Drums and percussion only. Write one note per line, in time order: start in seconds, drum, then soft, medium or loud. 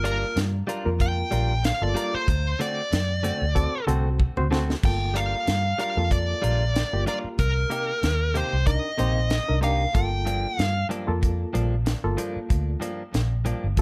0.05 closed hi-hat medium
0.37 snare loud
0.37 closed hi-hat medium
0.69 closed hi-hat medium
1.00 kick medium
1.00 closed hi-hat medium
1.32 closed hi-hat medium
1.64 snare loud
1.64 closed hi-hat medium
1.96 closed hi-hat medium
2.28 kick loud
2.28 closed hi-hat medium
2.60 closed hi-hat medium
2.92 snare loud
2.92 closed hi-hat medium
3.24 closed hi-hat medium
3.56 kick medium
3.56 closed hi-hat medium
3.88 closed hi-hat medium
4.20 kick medium
4.37 mid tom medium
4.53 snare loud
4.70 snare medium
4.83 kick loud
4.83 crash medium
5.16 closed hi-hat medium
5.47 snare loud
5.47 closed hi-hat medium
5.79 closed hi-hat medium
6.11 kick medium
6.11 closed hi-hat medium
6.43 closed hi-hat medium
6.75 snare loud
6.75 closed hi-hat medium
7.07 closed hi-hat medium
7.39 kick loud
7.39 closed hi-hat medium
7.71 closed hi-hat medium
8.03 snare loud
8.03 closed hi-hat medium
8.35 closed hi-hat medium
8.66 kick medium
8.66 closed hi-hat medium
8.99 closed hi-hat medium
9.30 snare loud
9.30 closed hi-hat medium
9.62 closed hi-hat medium
9.95 kick loud
9.95 closed hi-hat medium
10.27 closed hi-hat medium
10.59 snare loud
10.59 closed hi-hat medium
10.91 closed hi-hat medium
11.23 kick medium
11.23 closed hi-hat medium
11.55 closed hi-hat medium
11.86 snare loud
11.86 closed hi-hat medium
12.18 closed hi-hat medium
12.50 kick loud
12.50 closed hi-hat medium
12.82 closed hi-hat medium
13.14 snare loud
13.14 closed hi-hat medium
13.45 closed hi-hat medium
13.77 kick medium
13.77 closed hi-hat medium